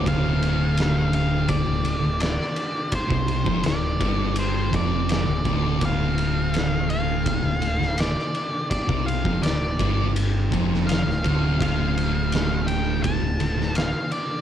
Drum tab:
RD |x-x-x-x-x-x-x-x-|x-x-x-x-x-x-x-x-|x-x-x-x-x-x-x-x-|x-x-x-x-x-x-x-x-|
SD |----o-------oo--|----o-------o---|----o------ooo--|----o------ooo--|
BD |o-------o-------|oo-o--o---o---o-|o-------o-------|oo-o--o---o---o-|

RD |x-x-x-x-x-x-x-x-|
SD |----o------oo---|
BD |o-------o-------|